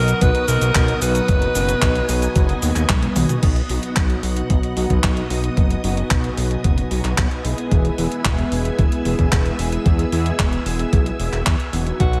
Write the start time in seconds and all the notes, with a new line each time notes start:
Already playing: B1 B2 F#3 B3 D#4 F#4 A#4 D#5 F#5 D#6
0.08 closed hi-hat, cabasa
0.21 B1 B4, kick, closed hi-hat, cabasa
0.35 closed hi-hat
0.48 B1 B2 F#3 B3 D#4 F#4 A#4, open hi-hat, cabasa
0.61 B1, closed hi-hat, cabasa
0.75 B1, kick, clap, closed hi-hat, cabasa
0.88 closed hi-hat
1.02 B1 B2 F#3 B3 D#4 F#4 B4, open hi-hat, cabasa
1.15 closed hi-hat, cabasa
1.28 F#1 G#5, kick, closed hi-hat, cabasa
1.42 closed hi-hat
1.55 F#1 B2 F#3 B3 D#4 F#4, open hi-hat, cabasa
1.69 closed hi-hat, cabasa
1.82 B1, kick, clap, closed hi-hat, cabasa
1.95 closed hi-hat
2.09 B1 B2 F#3 B3 D#4 F#4, open hi-hat, cabasa
2.22 closed hi-hat, cabasa
2.36 F#1, kick, closed hi-hat, cabasa
2.49 closed hi-hat
2.62 D#2 B2 F#3 B3 D#4 F#4, open hi-hat, cabasa
2.76 D#2, clap, closed hi-hat, cabasa
2.89 B1, kick, clap, closed hi-hat, high tom, cabasa
3.03 closed hi-hat, high tom
3.16 B1 B2 F#3 B3 D#4 F#4, open hi-hat, mid tom, cabasa
3.29 closed hi-hat, mid tom, cabasa
3.43 B1 B3 D#5 F#5 D#6, kick, closed hi-hat, crash
3.56 closed hi-hat
3.69 B1 B2 F#3 B3 D#4 F#4, open hi-hat
3.83 closed hi-hat
3.96 B1, kick, clap, closed hi-hat
4.10 closed hi-hat
4.23 B1 B2 F#3 B3 D#4 F#4, open hi-hat
4.37 closed hi-hat
4.50 B1, kick, closed hi-hat
4.63 closed hi-hat
4.77 B1 B2 F#3 B3 D#4 F#4, open hi-hat
4.90 B1, kick, closed hi-hat
5.04 B1, kick, clap, closed hi-hat
5.17 closed hi-hat
5.30 B1 B2 F#3 B3 D#4 F#4, open hi-hat
5.44 closed hi-hat
5.57 F#1 G#5, kick, closed hi-hat
5.70 closed hi-hat
5.84 F#1 B2 F#3 B3 D#4 F#4, open hi-hat
5.97 closed hi-hat
6.11 B1, kick, clap, closed hi-hat
6.24 closed hi-hat
6.37 B1 B2 F#3 B3 D#4 F#4, open hi-hat
6.51 closed hi-hat
6.64 F#1, kick, closed hi-hat
6.78 closed hi-hat
6.91 B1 B2 F#3 B3 D#4 F#4, open hi-hat
7.04 B1, clap, closed hi-hat
7.18 B1, kick, clap, closed hi-hat
7.31 closed hi-hat
7.45 B1 G#3 B3 E4 G#4, open hi-hat
7.58 closed hi-hat
7.71 E1 E5 E6, kick, closed hi-hat
7.85 closed hi-hat
7.98 E1 G#3 B3 E4 G#4, open hi-hat
8.12 closed hi-hat
8.25 E1, kick, clap, closed hi-hat
8.38 closed hi-hat
8.52 E1 G#3 B3 E4 G#4, open hi-hat
8.65 closed hi-hat
8.79 E1, kick, closed hi-hat
8.92 closed hi-hat
9.05 E1 G#3 B3 E4 G#4, open hi-hat
9.19 E1, kick, closed hi-hat
9.32 E1, kick, clap, closed hi-hat
9.46 closed hi-hat
9.59 E1 G#3 B3 E4 G#4, open hi-hat
9.72 closed hi-hat
9.86 E2, kick, closed hi-hat
9.99 closed hi-hat
10.12 E2 G#3 B3 E4 G#4, open hi-hat
10.26 closed hi-hat
10.39 E1, kick, clap, closed hi-hat
10.53 closed hi-hat
10.66 E1 G#3 B3 E4 G#4, open hi-hat
10.79 closed hi-hat
10.93 B1, kick, closed hi-hat
11.06 closed hi-hat
11.20 E1 G#3 B3 E4 G#4, open hi-hat
11.33 E1, clap, closed hi-hat
11.46 E2, kick, clap, closed hi-hat
11.60 closed hi-hat
11.73 E1 B2 F#3 B3 D#4 F#4, open hi-hat
11.87 closed hi-hat
12.00 B1 F#4 D#5 F#5 D#6, kick, closed hi-hat
12.13 closed hi-hat